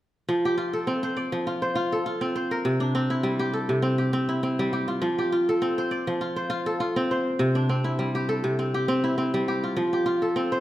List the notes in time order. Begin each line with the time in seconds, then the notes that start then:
0.29 F3
0.45 G4
0.58 F4
0.73 A4
0.87 C4
1.03 C5
1.17 D5
1.32 F3
1.47 F4
1.62 C5
1.75 F4
1.92 A4
2.06 F4
2.21 C4
2.36 C5
2.51 A#4
2.65 C3
2.80 D4
2.95 C4
3.10 E4
3.23 G3
3.39 G4
3.53 A4
3.69 C3
3.82 C4
3.98 G4
4.13 C4
4.29 E4
4.43 C4
4.59 G3
4.73 G4
4.88 F4
5.02 F3
5.18 G4
5.32 F4
5.49 A4
5.62 C4
5.78 C5
5.91 D5
6.07 F3
6.21 F4
6.36 C5
6.50 F4
6.66 A4
6.80 F4
6.96 C4
7.11 C5
7.39 C3
7.55 D4
7.69 C4
7.84 E4
7.99 G3
8.15 G4
8.29 A4
8.44 C3
8.59 C4
8.74 G4
8.88 C4
9.04 E4
9.18 C4
9.34 G3
9.48 G4
9.64 F4
9.77 F3
9.93 G4
10.06 F4
10.22 A4
10.36 C4
10.52 C5